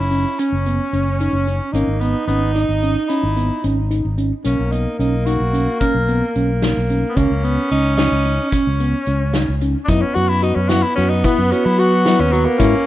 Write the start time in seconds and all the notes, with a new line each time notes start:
Already playing: C#4
0.00 F#1 E4
0.11 C#4, closed hi-hat
0.39 C#4, closed hi-hat
0.52 F#1
0.66 B3, closed hi-hat
0.93 F#1 C#4, closed hi-hat
1.20 C#4 D#4, closed hi-hat
1.33 F#1
1.47 C#4, closed hi-hat
1.72 G#1 A#3 C#4 D#4, closed hi-hat
1.87 G#1
2.00 B3, closed hi-hat
2.28 G#1 B3 C#4, closed hi-hat
2.54 D#4, closed hi-hat
2.69 G#1
2.83 C#4, closed hi-hat
3.09 C#4 E4, closed hi-hat
3.23 G#1
3.37 B3, closed hi-hat
3.64 G#1 C#4, closed hi-hat
3.91 D#4, closed hi-hat
4.05 G#1
4.18 C#4, closed hi-hat
4.44 B1 A#3 C#4, closed hi-hat
4.59 B1
4.72 B3 D#4, closed hi-hat
4.99 B1 C#4 D#4, closed hi-hat
5.26 D#4 F#4, closed hi-hat
5.40 B1
5.53 C#4, closed hi-hat
5.80 C#4 A#4, kick, closed hi-hat
5.95 B1
6.08 B3, closed hi-hat
6.35 B1 C#4, closed hi-hat
6.62 D#4, snare, closed hi-hat
6.77 B1
6.90 C#4, closed hi-hat
7.10 B3
7.16 C#2 A#3 C#4, kick, closed hi-hat
7.30 C#2
7.44 B3, closed hi-hat
7.71 C#2 C#4 D#4, closed hi-hat
7.97 D#4, snare, closed hi-hat
8.12 C#2
8.25 C#4, closed hi-hat
8.51 C#4, kick, closed hi-hat
8.67 C#2
8.80 B3, closed hi-hat
9.06 C#2 C#4, closed hi-hat
9.33 D#4, snare, closed hi-hat
9.49 C#2
9.61 C#4, closed hi-hat
9.85 B3 D4 E4, kick, closed hi-hat
9.89 F#2 D#4
10.02 C#4
10.15 F#2 F#4, closed hi-hat
10.29 E4
10.43 D#4 F#4, closed hi-hat
10.56 F#2 C#4
10.69 E4 F#4, snare, closed hi-hat
10.83 E4
10.96 F#2 C#4 F#4, snare, closed hi-hat
11.10 D#4
11.24 B3 E4, kick, closed hi-hat
11.39 F#2
11.52 C#4 F#4, closed hi-hat
11.66 F#3 E4
11.78 F#4, closed hi-hat
12.06 E4, snare, closed hi-hat
12.19 D#2 C#4
12.33 F#3 F#4, closed hi-hat
12.46 A#3
12.59 G#2 C#4 E4, kick, closed hi-hat